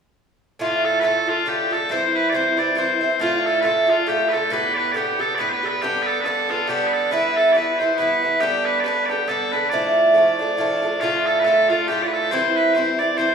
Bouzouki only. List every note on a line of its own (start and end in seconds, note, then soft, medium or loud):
0.59 1.00 A2 medium
0.59 1.02 D3 medium
0.59 1.03 A3 medium
0.59 1.03 F4 medium
1.01 1.27 A2 soft
1.01 1.28 D3 medium
1.01 1.28 A3 medium
1.01 1.25 F4 medium
1.26 1.46 D3 soft
1.26 1.47 A3 soft
1.26 1.46 F4 soft
1.46 1.71 A2 medium
1.46 1.72 D3 medium
1.46 1.72 A3 medium
1.46 1.69 F4 medium
1.71 1.90 D3 soft
1.71 1.91 A3 soft
1.71 1.89 F4 soft
1.89 2.31 G2 medium
1.89 2.33 E3 medium
1.89 2.34 C4 medium
1.89 2.34 E4 medium
2.32 2.58 G2 soft
2.32 2.59 E3 soft
2.32 2.58 C4 medium
2.32 2.56 E4 medium
2.57 2.76 E3 soft
2.57 2.77 C4 soft
2.57 2.76 E4 soft
2.75 3.01 G2 medium
2.75 3.02 E3 medium
2.75 3.02 C4 medium
2.75 3.00 E4 medium
3.01 3.21 E3 soft
3.01 3.21 C4 soft
3.01 3.20 E4 soft
3.19 3.61 A2 medium
3.19 3.63 D3 medium
3.19 3.64 A3 medium
3.19 3.65 F4 medium
3.62 3.88 A2 soft
3.62 3.89 D3 soft
3.62 3.88 A3 medium
3.62 3.86 F4 soft
3.87 4.07 D3 soft
3.87 4.08 A3 soft
3.87 4.07 F4 soft
4.07 4.32 A2 medium
4.07 4.33 D3 medium
4.07 4.32 A3 medium
4.07 4.30 F4 medium
4.32 4.50 D3 soft
4.32 4.52 A3 soft
4.32 4.51 F4 soft
4.50 4.93 A2 medium
4.50 4.95 D3 medium
4.50 4.96 B3 medium
4.50 4.97 G4 medium
4.94 5.19 A2 medium
4.94 5.20 D3 medium
4.94 5.20 B3 medium
4.94 5.18 G4 medium
5.19 5.38 D3 soft
5.19 5.39 B3 soft
5.19 5.38 G4 soft
5.38 5.63 A2 medium
5.38 5.64 D3 medium
5.38 5.64 B3 medium
5.38 5.62 G4 medium
5.63 5.82 D3 soft
5.63 5.83 B3 soft
5.63 5.82 G4 soft
5.82 6.23 G2 medium
5.82 6.25 D3 medium
5.82 6.26 B3 medium
5.82 6.26 D4 medium
6.24 6.50 G2 soft
6.24 6.50 D3 medium
6.24 6.49 B3 medium
6.24 6.48 D4 medium
6.49 6.68 D3 soft
6.49 6.68 B3 soft
6.49 6.68 D4 soft
6.67 7.10 G2 medium
6.67 7.11 D3 medium
6.67 7.12 B3 medium
6.67 7.13 D4 medium
7.11 7.54 G2 medium
7.11 7.55 E3 medium
7.11 7.57 B3 medium
7.11 7.56 E4 medium
7.55 7.80 G2 soft
7.55 7.81 E3 soft
7.55 7.80 B3 soft
7.55 7.79 E4 medium
7.80 7.98 E3 soft
7.80 7.99 B3 soft
7.80 7.99 E4 soft
7.98 8.23 G2 medium
7.98 8.24 E3 medium
7.98 8.23 B3 medium
7.98 8.21 E4 medium
8.22 8.41 E3 soft
8.22 8.40 B3 soft
8.22 8.42 E4 soft
8.40 8.83 G2 medium
8.40 8.86 D3 medium
8.40 8.85 B3 medium
8.40 8.87 D4 medium
8.84 9.10 G2 medium
8.84 9.11 D3 medium
8.84 9.10 B3 medium
8.84 9.08 D4 medium
9.10 9.28 D3 soft
9.10 9.28 B3 soft
9.10 9.29 D4 soft
9.28 9.53 G2 medium
9.28 9.54 D3 medium
9.28 9.53 B3 medium
9.28 9.51 D4 medium
9.52 9.72 D3 soft
9.52 9.72 B3 soft
9.52 9.72 D4 soft
9.71 10.13 A2 medium
9.71 10.15 F3 medium
9.71 10.16 A3 medium
9.71 10.17 D4 medium
10.14 10.40 A2 medium
10.14 10.40 F3 soft
10.14 10.40 A3 medium
10.14 10.38 D4 medium
10.39 10.57 F3 soft
10.39 10.59 A3 soft
10.39 10.58 D4 soft
10.57 10.83 A2 medium
10.57 10.84 F3 medium
10.57 10.83 A3 medium
10.57 10.81 D4 medium
10.82 11.02 F3 soft
10.82 11.02 A3 soft
10.82 11.01 D4 soft
11.01 11.43 A2 medium
11.01 11.45 D3 medium
11.01 11.45 A3 medium
11.01 11.46 F4 medium
11.44 11.70 A2 medium
11.44 11.70 D3 soft
11.44 11.70 A3 medium
11.44 11.68 F4 medium
11.70 11.88 D3 soft
11.70 11.89 A3 soft
11.70 11.88 F4 soft
11.88 12.31 A2 medium
11.88 12.32 D3 medium
11.88 12.32 A3 medium
11.88 12.33 F4 medium
12.31 12.74 G2 medium
12.31 12.75 E3 medium
12.31 12.76 C4 medium
12.31 12.76 E4 medium
12.75 13.00 G2 medium
12.75 13.00 E3 medium
12.75 13.00 C4 medium
12.75 12.98 E4 medium
12.99 13.18 E3 soft
12.99 13.18 C4 soft
12.99 13.18 E4 soft
13.18 13.35 G2 medium
13.18 13.35 E3 medium
13.18 13.35 C4 medium
13.18 13.35 E4 medium